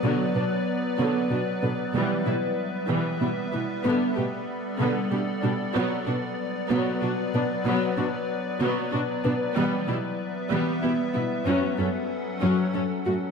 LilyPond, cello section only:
\new Staff \with { instrumentName = "Cello section" } { \clef bass \time 6/8 \key b \minor \tempo 4. = 63 b,8 b,8 r8 b,8 b,8 b,8 | b,8 b,8 r8 b,8 b,8 b,8 | b,8 b,8 r8 b,8 b,8 b,8 | b,8 b,8 r8 b,8 b,8 b,8 |
b,8 b,8 r8 b,8 b,8 b,8 | b,8 b,8 r8 b,8 b,8 b,8 | fis,8 fis,8 r8 fis,8 fis,8 fis,8 | }